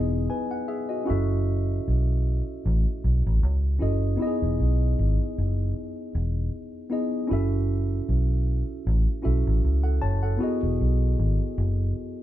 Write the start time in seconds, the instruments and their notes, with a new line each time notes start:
Already playing: fingered electric bass E1, tine electric piano B3 D#4 E4 G#4 D#5
0.30 tine electric piano B4 G#5
0.51 tine electric piano F#5
0.68 tine electric piano G#4 E5
0.89 tine electric piano F#4 D#5
1.04 tine electric piano C#4 E4 F#4
1.09 fingered electric bass F#1, tine electric piano A4 E5
1.88 fingered electric bass B1
2.66 fingered electric bass A1
3.04 fingered electric bass B1
3.26 fingered electric bass A1
3.43 fingered electric bass C#2
3.79 fingered electric bass F#1, tine electric piano C#4 E4 F#4 A4 D#5
4.16 tine electric piano B3 D#4 E4
4.21 tine electric piano G4 D#5
4.27 tine electric piano G#4
4.42 fingered electric bass E1
4.60 fingered electric bass B1
4.99 fingered electric bass G#1
5.38 fingered electric bass F#1
6.15 fingered electric bass E1
6.90 tine electric piano B3 D#4 E4 G#4 D#5
7.27 fingered electric bass F#1, tine electric piano C#4 E4 F#4
7.32 tine electric piano A4 E5
8.09 fingered electric bass B1
8.87 fingered electric bass A1
9.22 fingered electric bass B1, tine electric piano C#4 E4 F#4 A4 E5
9.47 fingered electric bass A1
9.64 fingered electric bass C#2
9.84 tine electric piano A4 F#5
10.02 fingered electric bass F#1, tine electric piano C#5 A5
10.23 tine electric piano A4 F#5
10.38 tine electric piano B3 E4 F#4
10.42 tine electric piano G#4 D#5
10.63 fingered electric bass E1
10.81 fingered electric bass B1
11.19 fingered electric bass G#1
11.58 fingered electric bass F#1